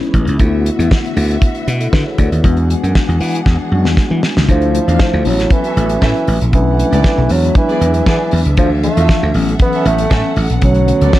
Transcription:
Already playing: string section G#3 G#4 B4 C#5, tine electric piano G#3 B3 C#4 D#4 E4
0.03 closed hi-hat
0.14 slap bass A1, kick, closed hi-hat
0.27 slap bass C#2, closed hi-hat
0.38 slap bass D2, string section D3 B3 F#4 E5, tine electric piano A3 B3 E4 F4, kick, closed hi-hat
0.46 tine electric piano F#4
0.66 closed hi-hat
0.79 slap bass E2, closed hi-hat
0.91 kick, snare
1.06 closed hi-hat
1.17 slap bass D2, open hi-hat
1.31 closed hi-hat
1.42 kick, closed hi-hat
1.55 closed hi-hat
1.68 slap bass B2, closed hi-hat
1.81 tine electric piano E4 A4, closed hi-hat
1.93 slap bass D3, tine electric piano F#4 B4, kick, snare
2.06 tine electric piano G#4 C#5
2.18 slap bass D2, tine electric piano A4 D5, kick, closed hi-hat
2.32 slap bass D#2, tine electric piano B4 E5, closed hi-hat
2.43 slap bass E2, string section E3 D4 G#4 F#5, tine electric piano G#3 B3 D4 F#4, kick, closed hi-hat
2.57 closed hi-hat
2.70 closed hi-hat
2.83 slap bass F#2, closed hi-hat
2.95 kick, snare
3.09 slap bass E2, closed hi-hat
3.20 slap bass E3, open hi-hat
3.35 closed hi-hat
3.46 slap bass E2, kick, snare
3.72 slap bass F#2, tine electric piano G3 B3 D4 F#4
3.78 tine electric piano G#3
3.85 slap bass E2, snare
3.97 kick, snare
4.11 slap bass E3
4.23 snare
4.37 slap bass C#2, snare
4.48 slap bass D2, tine electric piano F3 A3 D4 E4, string section F3 D4 A4 E5, bassoon F3, kick, closed hi-hat
4.62 closed hi-hat
4.73 tine electric piano F3 A3 D4 E4, closed hi-hat
4.87 slap bass E2, violin section D4 A4 F5, closed hi-hat
4.99 bassoon F3, kick, snare
5.14 slap bass D2
5.24 slap bass A1, tine electric piano F#3 B3 C#4 E4, bassoon F#3, string section C#4 F#4, open hi-hat
5.39 snare, closed hi-hat
5.50 bassoon E3, kick, closed hi-hat
5.64 violin section C#4 A4 E5, closed hi-hat
5.77 slap bass A1, closed hi-hat
5.89 closed hi-hat
6.02 slap bass A2, bassoon E3, violin section C#4 A4 E5, kick, snare
6.16 closed hi-hat
6.27 slap bass A1, open hi-hat
6.41 slap bass A#1, closed hi-hat
6.53 slap bass B1, string section D3 A4 B4 F#5, bassoon E3, tine electric piano F#3 A3 C#4 D4, kick, closed hi-hat
6.78 tine electric piano F#3 A3 C#4 D4, closed hi-hat
6.92 slap bass C#2, violin section B3 A4 D5, closed hi-hat
7.04 kick, snare
7.18 slap bass B1
7.29 slap bass E2, tine electric piano F#3 G#3 B3 D4, bassoon F#3, string section D4 G#4 E5, open hi-hat
7.44 closed hi-hat
7.55 bassoon E3, kick, closed hi-hat
7.69 violin section B3 G#4 D5, closed hi-hat
7.81 slap bass E2, closed hi-hat
7.94 closed hi-hat
8.06 slap bass E3, bassoon E3, violin section B3 G#4 D5, kick, snare
8.31 slap bass E2, open hi-hat
8.45 slap bass C#2, closed hi-hat
8.57 slap bass D2, tine electric piano E3 F3 A3 D4, bassoon F3, string section A4 F5, kick, closed hi-hat
8.83 tine electric piano E3 F3 A3 D4, bassoon A3, closed hi-hat
8.96 slap bass E2, violin section A3 F4 E5, closed hi-hat
9.09 kick, snare
9.23 slap bass D2
9.34 slap bass A1, tine electric piano E3 F#3 B3 C#4, string section C#4 F#5, open hi-hat
9.49 closed hi-hat
9.59 bassoon B3, kick, closed hi-hat
9.73 violin section C#4 A4 E5, closed hi-hat
9.85 slap bass A1, bassoon A3, closed hi-hat
9.98 closed hi-hat
10.10 slap bass A2, violin section C#4 A4 E5, kick, snare
10.36 slap bass A1, open hi-hat
10.50 slap bass A#1, closed hi-hat
10.62 slap bass B1, tine electric piano D3 F#3 A3 C#4, bassoon F#3, string section B3 B4, kick, closed hi-hat
10.74 closed hi-hat
10.87 tine electric piano D3 F#3 A3 C#4, closed hi-hat
11.00 slap bass C#2, violin section B3 A4 D5, closed hi-hat
11.13 kick, snare

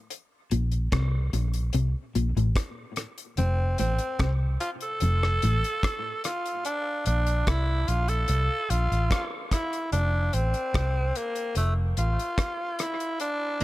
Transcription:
0.10 closed hi-hat
0.51 fingered electric bass A#1, clean electric guitar A#2, closed hi-hat
0.72 closed hi-hat
0.92 fingered electric bass C2, clean electric guitar C3, kick, cross-stick, closed hi-hat
1.33 fingered electric bass A#1, clean electric guitar A#2, closed hi-hat
1.54 closed hi-hat
1.73 fingered electric bass C2, clean electric guitar C3, closed hi-hat
2.15 fingered electric bass A#1, clean electric guitar A#2, closed hi-hat
2.36 fingered electric bass A1, clean electric guitar A2, closed hi-hat
2.56 kick, cross-stick, closed hi-hat
2.96 cross-stick, closed hi-hat
3.18 closed hi-hat
3.37 fingered electric bass F1, clean electric guitar F2, tenor saxophone C4, closed hi-hat
3.78 fingered electric bass A1, clean electric guitar A2, tenor saxophone C4, closed hi-hat
3.99 closed hi-hat
4.19 fingered electric bass C2, clean electric guitar C3, kick, cross-stick, closed hi-hat
4.60 tenor saxophone F4, closed hi-hat
4.81 tenor saxophone A4, closed hi-hat
5.00 fingered electric bass F1, clean electric guitar F2, closed hi-hat
5.23 cross-stick
5.42 fingered electric bass A1, clean electric guitar A2, closed hi-hat
5.64 closed hi-hat
5.83 kick, cross-stick, closed hi-hat
6.24 tenor saxophone F4, cross-stick, closed hi-hat
6.46 closed hi-hat
6.65 tenor saxophone D4, closed hi-hat
7.06 fingered electric bass A#1, tenor saxophone D4, closed hi-hat
7.26 closed hi-hat
7.47 fingered electric bass C2, tenor saxophone E4, kick, cross-stick, closed hi-hat
7.88 fingered electric bass A#1, tenor saxophone F4, closed hi-hat
8.08 tenor saxophone A4, closed hi-hat
8.28 fingered electric bass C2, closed hi-hat
8.70 fingered electric bass A#1, tenor saxophone F4, closed hi-hat
8.92 fingered electric bass A1, closed hi-hat
9.11 kick, cross-stick, closed hi-hat
9.51 tenor saxophone E4, kick, cross-stick, closed hi-hat
9.73 closed hi-hat
9.92 fingered electric bass F1, tenor saxophone D4, closed hi-hat
10.33 fingered electric bass A1, tenor saxophone C4, closed hi-hat
10.54 closed hi-hat
10.74 fingered electric bass C2, kick, cross-stick, closed hi-hat
11.15 tenor saxophone A#3, closed hi-hat
11.35 closed hi-hat
11.55 fingered electric bass F1, tenor saxophone A3, closed hi-hat
11.97 fingered electric bass A1, tenor saxophone F4, closed hi-hat
12.19 closed hi-hat
12.38 kick, cross-stick, closed hi-hat
12.79 tenor saxophone E4, cross-stick, closed hi-hat
13.00 closed hi-hat
13.20 tenor saxophone D4, closed hi-hat
13.60 clean electric guitar A#3, closed hi-hat

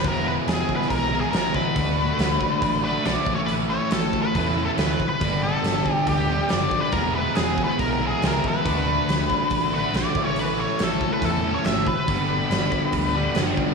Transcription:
0.04 fingered electric bass E1, distorted electric guitar E3 G#3 B3 E4, lead electric guitar A#4, kick, open hi-hat
0.28 lead electric guitar B4
0.46 fingered electric bass E1, lead electric guitar G#4, snare, open hi-hat
0.69 kick
0.76 lead electric guitar B4
0.82 snare
0.90 fingered electric bass B1, lead electric guitar A#4, kick, open hi-hat
1.12 distorted electric guitar E3 G#3 B3 E4
1.21 lead electric guitar G#4
1.31 fingered electric bass A1, distorted electric guitar E3 G#3, lead electric guitar A#4, open hi-hat
1.35 distorted electric guitar B3 E4, snare
1.54 lead electric guitar B4, kick
1.75 fingered electric bass D2, distorted electric guitar D3 A3 D4 F#4, kick, open hi-hat
2.19 fingered electric bass D2, snare, open hi-hat
2.41 kick
2.61 fingered electric bass A1, kick, open hi-hat
2.82 distorted electric guitar D3 A3 D4 F#4, lead electric guitar B4
3.05 fingered electric bass B1, distorted electric guitar D3 A3 D4 F#4, lead electric guitar D5, snare, open hi-hat
3.26 fingered electric bass A1, distorted electric guitar A2 E3 A3 C#4 E4, kick
3.35 lead electric guitar C#5
3.46 lead electric guitar B4, open hi-hat
3.70 lead electric guitar C#5
3.91 fingered electric bass A1, lead electric guitar A4, snare, open hi-hat
4.13 kick
4.22 lead electric guitar B4
4.35 fingered electric bass E2, distorted electric guitar A2 E3 A3 C#4, lead electric guitar B4, kick, open hi-hat
4.39 distorted electric guitar E4
4.57 distorted electric guitar A2 E3 A3 C#4 E4
4.65 lead electric guitar A4
4.77 fingered electric bass D2, lead electric guitar B4, snare, open hi-hat
5.00 kick
5.09 lead electric guitar B4
5.21 fingered electric bass G1, distorted electric guitar G2 D3 G3 B3 D4, kick, open hi-hat
5.43 lead electric guitar A4
5.63 fingered electric bass G1, snare, open hi-hat
5.86 kick
5.93 lead electric guitar G4
6.07 fingered electric bass D2, lead electric guitar G4, kick, open hi-hat
6.29 distorted electric guitar G2 D3 G3 B3 D4
6.49 fingered electric bass F#1, distorted electric guitar G2 D3 G3 B3, lead electric guitar D5, snare, open hi-hat
6.53 distorted electric guitar D4
6.71 kick
6.80 lead electric guitar B4
6.92 fingered electric bass E1, distorted electric guitar E3 G#3 B3 E4, lead electric guitar A#4, kick, open hi-hat
7.15 lead electric guitar B4
7.35 fingered electric bass E1, lead electric guitar G#4, snare, open hi-hat
7.58 kick
7.64 lead electric guitar B4
7.79 fingered electric bass B1, lead electric guitar A#4, kick, open hi-hat
8.01 distorted electric guitar E3 G#3 B3 E4
8.07 lead electric guitar G#4
8.22 fingered electric bass C#2, distorted electric guitar E3 G#3 B3 E4, snare, open hi-hat
8.27 lead electric guitar A#4
8.44 lead electric guitar B4, kick
8.65 fingered electric bass D2, distorted electric guitar D3 A3 D4 F#4, kick, open hi-hat
9.09 fingered electric bass D2, snare, open hi-hat
9.30 kick
9.50 fingered electric bass A1, kick, open hi-hat
9.73 distorted electric guitar D3 A3 D4 F#4, lead electric guitar B4
9.93 fingered electric bass B1, distorted electric guitar D3 A3 D4 F#4, lead electric guitar D5, snare, open hi-hat
10.14 fingered electric bass A1, distorted electric guitar A2 E3 A3 C#4 E4, kick
10.24 lead electric guitar C#5
10.36 lead electric guitar B4, open hi-hat
10.60 lead electric guitar C#5
10.79 fingered electric bass A1, snare, open hi-hat
10.84 lead electric guitar A4
11.01 kick
11.13 lead electric guitar B4
11.22 fingered electric bass E2, distorted electric guitar A2 E3 A3 C#4 E4, lead electric guitar A4, kick, open hi-hat
11.42 distorted electric guitar A2 E3 A3 C#4 E4
11.54 lead electric guitar C#5
11.64 fingered electric bass G#1, lead electric guitar E5, snare, open hi-hat
11.87 lead electric guitar B4, kick
12.08 fingered electric bass G1, distorted electric guitar G2 D3 G3 B3 D4, kick, open hi-hat
12.50 fingered electric bass G1, snare, open hi-hat
12.72 kick
12.93 fingered electric bass D2, kick, open hi-hat
13.15 distorted electric guitar G2 D3 G3 B3 D4
13.35 fingered electric bass F#1, distorted electric guitar G2 D3 G3 B3 D4, snare, open hi-hat
13.57 kick

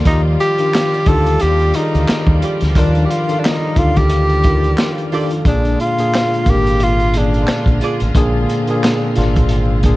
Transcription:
Already playing: string section F4
0.05 fingered electric bass D#2, tine electric piano D#3 F4 G4 D5, string section F3 G3 D5, tenor saxophone D#4, kick, closed hi-hat
0.40 tenor saxophone G4, closed hi-hat
0.58 tine electric piano D#3 D4 F4 G4, closed hi-hat
0.74 snare, clap, closed hi-hat
0.94 closed hi-hat
1.06 fingered electric bass D2, tine electric piano D4 D#4 F4 G4, tenor saxophone A4, kick, closed hi-hat
1.26 closed hi-hat
1.40 fingered electric bass D#2, tenor saxophone G4, closed hi-hat
1.59 closed hi-hat
1.74 tine electric piano D#3 F4 G#4 D5, tenor saxophone D#4, closed hi-hat
1.83 tine electric piano A4
1.95 fingered electric bass D2, closed hi-hat
2.09 snare, clap, closed hi-hat
2.27 fingered electric bass D#2, kick
2.42 hollow-body jazz guitar F4 G4 D5, closed hi-hat
2.61 fingered electric bass D2, snare, closed hi-hat
2.75 fingered electric bass D#2, tine electric piano D#3 D4 F4 A#4, tenor saxophone D4, kick, closed hi-hat
2.95 closed hi-hat
3.05 tenor saxophone G4
3.10 tenor saxophone F4, closed hi-hat
3.28 tine electric piano D#3 D4 F4 A4, closed hi-hat
3.39 tenor saxophone D4
3.45 tenor saxophone D#4, snare, clap, closed hi-hat
3.76 fingered electric bass D2, tine electric piano D4 D#4 F4 A4, tenor saxophone F4, kick, closed hi-hat
3.96 tenor saxophone G4, kick, closed hi-hat
4.10 closed hi-hat
4.29 closed hi-hat
4.44 tine electric piano D4 D#4 F4 A#4, kick, closed hi-hat
4.64 closed hi-hat
4.78 snare, clap, closed hi-hat
4.98 closed hi-hat
5.12 tine electric piano D#3 D4 F4 A4, hollow-body jazz guitar F4 G4 D5, open hi-hat
5.31 closed hi-hat
5.45 fingered electric bass A#1, tine electric piano A#2 A#3 D4 G#4, string section D3 G#3 A#3 F4, tenor saxophone D4, kick, closed hi-hat
5.65 closed hi-hat
5.80 tenor saxophone F4, closed hi-hat
5.97 tine electric piano A#2 A#3 D4 G#4, closed hi-hat
6.15 snare, clap, closed hi-hat
6.34 closed hi-hat
6.46 fingered electric bass G#1, tine electric piano A#2 A#3 D4 A#4, tenor saxophone G4, kick, closed hi-hat
6.67 closed hi-hat
6.80 tenor saxophone F4, closed hi-hat
7.00 closed hi-hat
7.14 tine electric piano A#2 A#3 C#4 G#4, tenor saxophone D4, closed hi-hat
7.22 tine electric piano D4
7.34 closed hi-hat
7.48 snare, clap, closed hi-hat
7.66 fingered electric bass A#1, kick, closed hi-hat
7.81 hollow-body jazz guitar F4 G#4 D5, closed hi-hat
8.00 fingered electric bass A1, closed hi-hat
8.15 fingered electric bass A#1, tine electric piano A#2 A#3 D4 G#4, string section C4, kick, closed hi-hat
8.49 closed hi-hat
8.67 tine electric piano A#2 A#3 D4 G#4, closed hi-hat
8.84 snare, clap, closed hi-hat
9.16 fingered electric bass G#1, tine electric piano A#2 A#3 D4 F4, snare, closed hi-hat
9.36 kick, closed hi-hat
9.49 closed hi-hat
9.83 tine electric piano A#2 A#3 D4 G#4, kick, closed hi-hat

